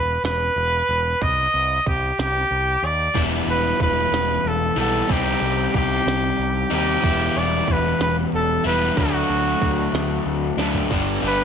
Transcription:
0.00 0.16 E1 medium
0.00 0.21 B4 loud
0.23 0.48 E1 medium
0.23 1.24 B4 loud
0.23 snare loud
0.23 closed hi-hat medium
0.56 0.81 E1 medium
0.56 closed hi-hat medium
0.89 1.13 E1 medium
0.89 closed hi-hat medium
1.22 1.46 C2 medium
1.22 1.87 D#5 loud
1.22 kick loud
1.22 closed hi-hat medium
1.54 1.78 C2 medium
1.54 closed hi-hat medium
1.86 2.11 C2 medium
1.86 2.17 G4 medium
1.86 kick medium
1.86 closed hi-hat medium
2.19 2.43 C2 medium
2.19 2.87 G4 medium
2.19 snare loud
2.19 closed hi-hat medium
2.51 2.75 C2 medium
2.51 closed hi-hat medium
2.83 3.08 D#2 medium
2.83 3.22 D5 medium
2.83 closed hi-hat medium
3.14 3.40 E1 medium
3.14 4.75 E3 medium
3.14 4.77 G3 medium
3.14 4.76 B3 medium
3.14 4.75 E4 medium
3.14 kick loud
3.14 closed hi-hat medium
3.47 3.72 E1 medium
3.47 3.79 B4 medium
3.47 closed hi-hat medium
3.80 4.05 E1 medium
3.80 4.49 B4 loud
3.80 kick medium
3.80 closed hi-hat medium
4.12 4.37 E1 medium
4.12 snare loud
4.12 closed hi-hat medium
4.44 4.69 E1 medium
4.44 4.79 A4 medium
4.44 closed hi-hat medium
4.76 5.01 B1 medium
4.76 5.09 E3 medium
4.76 5.09 G3 medium
4.76 5.08 B3 medium
4.76 5.07 E4 medium
4.76 5.13 A4 medium
4.76 closed hi-hat medium
5.09 5.34 C2 medium
5.09 6.69 C3 medium
5.09 6.69 G3 medium
5.09 6.70 C4 medium
5.09 6.69 D#4 medium
5.09 5.75 G4 medium
5.09 kick loud
5.09 closed hi-hat medium
5.41 5.66 C2 medium
5.41 closed hi-hat medium
5.74 5.99 C2 medium
5.74 6.69 G4 medium
5.74 kick medium
5.74 closed hi-hat medium
6.06 6.31 C2 medium
6.06 snare loud
6.06 closed hi-hat medium
6.39 6.63 C2 medium
6.39 closed hi-hat medium
6.70 6.96 D#2 medium
6.70 7.02 C3 medium
6.70 7.02 G3 medium
6.70 7.02 C4 medium
6.70 7.01 D#4 medium
6.70 7.40 G4 loud
6.70 closed hi-hat medium
7.03 7.28 E1 medium
7.03 8.63 E3 medium
7.03 8.63 G3 medium
7.03 8.64 B3 medium
7.03 8.63 E4 medium
7.03 kick loud
7.03 closed hi-hat medium
7.36 7.61 E1 medium
7.36 7.73 D5 loud
7.36 closed hi-hat medium
7.68 7.92 E1 medium
7.68 kick medium
7.68 closed hi-hat medium
7.72 8.02 B4 medium
8.00 8.25 E1 medium
8.00 8.16 B4 medium
8.00 snare loud
8.00 closed hi-hat medium
8.32 8.58 E1 medium
8.32 8.64 A4 medium
8.32 closed hi-hat medium
8.65 8.90 E1 medium
8.65 8.97 E3 medium
8.65 8.96 G3 medium
8.65 8.96 B3 medium
8.65 8.95 E4 medium
8.65 9.00 B4 medium
8.65 closed hi-hat medium
8.96 9.22 D2 medium
8.96 10.57 D3 medium
8.96 10.57 F#3 medium
8.96 10.57 A3 medium
8.96 10.58 D4 medium
8.96 10.27 F#4 medium
8.96 kick loud
8.96 closed hi-hat medium
9.29 9.54 D2 medium
9.29 closed hi-hat medium
9.61 9.86 D2 medium
9.61 kick medium
9.61 closed hi-hat medium
9.93 10.18 D2 medium
9.93 snare loud
9.93 closed hi-hat medium
10.26 10.50 D2 medium
10.26 closed hi-hat medium
10.57 10.82 D2 medium
10.57 10.90 D3 medium
10.57 10.90 F#3 medium
10.57 10.89 A3 medium
10.57 10.89 D4 medium
10.57 snare medium
10.57 closed hi-hat medium
10.75 floor tom medium
10.90 11.17 G1 medium
10.90 11.23 G2 medium
10.90 11.23 D3 medium
10.90 11.23 G3 medium
10.90 11.23 B3 loud
10.90 11.25 D4 loud
10.90 11.24 G4 loud
10.90 kick loud
10.90 closed hi-hat medium
10.90 crash loud
11.22 11.44 G1 medium
11.22 11.44 G2 medium
11.22 11.44 D3 medium
11.22 11.44 G3 medium
11.22 11.44 B3 medium
11.22 11.44 D4 medium
11.22 11.44 G4 medium
11.22 closed hi-hat medium
11.27 11.44 B4 medium

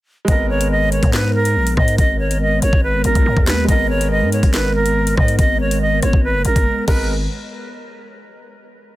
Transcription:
0.25 1.00 G#1 loud
0.25 3.63 G#3 medium
0.25 6.84 G#3 medium
0.25 6.84 B3 medium
0.25 3.65 B3 medium
0.25 3.65 A#4 medium
0.25 0.47 D#5 medium
0.25 kick loud
0.25 closed hi-hat medium
0.32 3.66 A#4 medium
0.50 0.68 C#5 medium
0.61 closed hi-hat medium
0.71 0.90 D#5 medium
0.92 1.11 C#5 medium
0.92 closed hi-hat medium
1.03 1.57 G#2 loud
1.03 kick loud
1.03 closed hi-hat medium
1.13 1.32 B4 medium
1.13 snare loud
1.13 clap loud
1.34 1.74 A#4 loud
1.45 closed hi-hat medium
1.56 1.76 A#1 loud
1.67 closed hi-hat medium
1.77 1.97 G#2 loud
1.77 1.96 D#5 medium
1.77 kick medium
1.77 cross-stick loud
1.88 closed hi-hat medium
1.98 2.60 G#1 loud
1.98 2.17 D#5 loud
1.98 kick loud
1.98 closed hi-hat medium
2.20 2.38 C#5 medium
2.31 closed hi-hat medium
2.41 2.60 D#5 medium
2.62 2.72 G#1 loud
2.62 2.81 C#5 medium
2.62 closed hi-hat medium
2.73 3.03 G#1 loud
2.73 kick loud
2.83 3.02 B4 medium
3.04 3.15 G#1 loud
3.04 3.45 A#4 medium
3.04 closed hi-hat medium
3.15 3.26 B1 loud
3.15 kick medium
3.15 closed hi-hat medium
3.26 3.36 G#2 loud
3.37 3.67 D#2 loud
3.37 kick loud
3.47 3.66 B4 medium
3.47 cross-stick loud
3.47 snare loud
3.47 clap loud
3.47 closed hi-hat medium
3.65 4.23 G#1 loud
3.65 6.82 G#3 medium
3.65 6.84 B3 medium
3.65 kick loud
3.65 closed hi-hat medium
3.69 6.85 A#4 medium
3.69 3.87 D#5 loud
3.90 4.08 C#5 medium
4.01 closed hi-hat medium
4.11 4.30 D#5 medium
4.22 4.42 G#2 loud
4.32 4.51 C#5 medium
4.32 closed hi-hat medium
4.43 5.15 G#1 loud
4.43 kick loud
4.43 closed hi-hat medium
4.54 4.72 B4 medium
4.54 snare loud
4.54 clap loud
4.75 5.15 A#4 medium
4.86 closed hi-hat medium
5.07 closed hi-hat medium
5.17 5.38 G#2 loud
5.17 5.36 D#5 medium
5.17 kick medium
5.17 cross-stick loud
5.28 closed hi-hat medium
5.39 6.00 G#1 loud
5.39 5.58 D#5 loud
5.39 kick loud
5.39 closed hi-hat medium
5.60 5.79 C#5 medium
5.71 closed hi-hat medium
5.82 6.00 D#5 medium
6.03 6.13 G#1 loud
6.03 6.21 C#5 medium
6.03 cross-stick loud
6.03 closed hi-hat medium
6.13 6.36 G#1 loud
6.13 kick loud
6.24 6.43 B4 medium
6.35 6.45 F#1 loud
6.45 6.55 G#1 loud
6.45 6.85 A#4 medium
6.45 closed hi-hat medium
6.56 6.66 F#1 loud
6.56 kick medium
6.56 closed hi-hat medium
6.88 7.27 G#1 loud
6.88 7.08 G#3 medium
6.88 7.08 B3 medium
6.88 7.08 A#4 medium
6.88 7.07 B4 medium
6.88 kick loud
6.88 crash medium

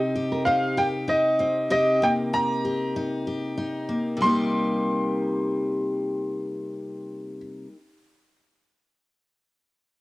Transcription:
0.00 1.69 C3 medium
0.00 1.39 C4 medium
0.00 0.46 D#4 medium
0.00 0.15 G4 medium
0.00 0.49 D#5 medium
0.15 0.77 G4 medium
0.32 0.46 A#4 medium
0.45 1.07 D#4 medium
0.45 0.77 C5 medium
0.45 0.78 F5 medium
0.77 1.70 G4 medium
0.77 0.94 A#4 medium
0.77 0.85 G5 medium
1.08 2.33 D#4 medium
1.08 1.68 D#5 medium
1.39 2.02 C4 medium
1.39 1.56 C5 medium
1.70 4.16 C3 medium
1.70 2.64 G4 medium
1.70 2.04 D#5 loud
2.02 3.88 A#3 medium
2.02 2.10 G5 loud
2.33 2.96 D#4 medium
2.33 2.92 A#5 medium
2.65 3.27 G4 medium
2.96 3.57 D#4 medium
3.27 4.29 G4 medium
3.58 4.26 D#4 medium
3.89 4.23 A#3 medium
4.17 7.67 C3 medium
4.17 7.71 G3 medium
4.22 7.74 A#3 medium
4.22 7.36 C6 medium
4.26 7.76 D#4 medium
4.26 7.79 G4 medium

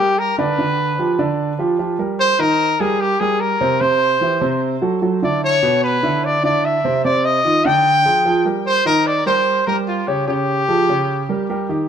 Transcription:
0.00 0.31 G3 medium
0.00 0.20 G4 loud
0.00 0.31 G4 medium
0.00 0.31 A#4 medium
0.19 0.38 A#4 medium
0.38 0.55 D3 medium
0.38 0.55 D4 medium
0.38 1.35 B4 medium
0.38 0.55 D5 medium
0.59 0.91 D3 medium
0.59 0.92 D4 medium
0.59 0.92 D5 medium
0.98 1.15 F3 medium
0.98 1.15 F4 medium
0.98 1.15 G4 medium
1.19 1.52 D3 medium
1.19 1.52 D4 medium
1.19 1.52 D5 medium
1.59 1.75 F3 medium
1.59 1.76 F4 medium
1.59 1.76 G4 medium
1.79 1.96 F3 medium
1.79 1.96 F4 medium
1.79 1.96 G4 medium
1.99 2.32 G3 medium
1.99 2.32 G4 medium
1.99 2.32 A#4 medium
2.20 2.41 C5 loud
2.39 2.72 D#3 medium
2.39 2.73 D#4 medium
2.39 2.82 A#4 loud
2.39 2.73 D#5 medium
2.80 3.13 G3 medium
2.80 3.13 G4 medium
2.80 3.02 G#4 medium
2.80 3.13 A#4 medium
3.00 3.21 G4 medium
3.20 3.54 G3 medium
3.20 3.54 G4 medium
3.20 3.42 G#4 medium
3.20 3.54 A#4 medium
3.40 3.82 A#4 medium
3.61 3.77 C3 medium
3.61 3.77 C4 medium
3.61 3.78 C5 medium
3.81 4.14 C3 medium
3.81 4.14 C4 medium
3.81 4.62 C5 loud
3.81 4.14 C5 medium
4.21 4.38 E3 medium
4.21 4.38 E4 medium
4.21 4.38 G4 medium
4.41 4.75 C3 medium
4.41 4.75 C4 medium
4.41 4.75 C5 medium
4.82 4.98 F#3 medium
4.82 4.99 F#4 medium
4.82 4.99 A4 medium
5.02 5.19 F#3 medium
5.02 5.19 F#4 medium
5.02 5.19 A4 medium
5.22 5.56 D3 medium
5.22 5.56 D4 medium
5.22 5.56 E4 medium
5.22 5.42 D5 medium
5.44 5.81 C#5 loud
5.63 5.96 B2 medium
5.63 5.96 B3 medium
5.63 5.96 B4 medium
5.84 6.26 B4 medium
6.03 6.36 D3 medium
6.03 6.37 D4 medium
6.03 6.37 E4 medium
6.25 6.44 D5 loud
6.43 6.77 D3 medium
6.43 6.77 D4 medium
6.43 6.77 E4 medium
6.43 6.66 D5 loud
6.65 7.04 E5 medium
6.85 7.01 C3 medium
6.85 7.01 C4 medium
6.85 7.01 C5 medium
7.05 7.38 C3 medium
7.05 7.38 C4 medium
7.05 7.38 C5 medium
7.05 7.26 D5 loud
7.25 7.67 D#5 loud
7.45 7.62 D#3 medium
7.45 7.62 D#4 medium
7.45 7.62 F4 medium
7.65 7.98 D3 medium
7.65 7.98 D4 medium
7.65 7.99 D5 medium
7.65 8.46 G5 loud
8.05 8.22 F3 medium
8.05 8.22 F4 medium
8.05 8.22 G#4 medium
8.25 8.42 F3 medium
8.25 8.42 F4 medium
8.25 8.42 G#4 medium
8.45 8.79 G3 medium
8.45 8.79 G4 medium
8.45 8.79 A#4 medium
8.66 8.85 C5 loud
8.85 9.19 D#3 medium
8.85 9.19 D#4 medium
8.85 9.08 A#4 medium
8.85 9.19 D#5 medium
9.07 9.26 D5 medium
9.26 9.59 G3 medium
9.26 9.60 G4 medium
9.26 9.60 A#4 medium
9.26 9.64 C5 medium
9.67 10.00 G3 medium
9.67 10.01 G4 medium
9.67 9.76 A#4 medium
9.67 10.01 A#4 medium
9.88 10.09 F4 medium
10.07 10.24 C#3 medium
10.07 10.24 C#4 medium
10.07 10.27 G4 medium
10.07 10.24 C#5 medium
10.28 10.61 C#3 medium
10.28 10.61 C#4 medium
10.28 11.45 G4 medium
10.28 10.61 C#5 medium
10.68 10.85 F3 medium
10.68 10.85 F4 medium
10.68 10.85 G#4 medium
10.89 11.22 C#3 medium
10.89 11.22 C#4 medium
10.89 11.22 C#5 medium
11.29 11.46 G3 medium
11.29 11.46 G4 medium
11.29 11.46 A#4 medium
11.50 11.66 G3 medium
11.50 11.66 G4 medium
11.50 11.66 A#4 medium
11.69 11.86 D#3 medium
11.69 11.86 D#4 medium
11.69 11.86 G4 medium

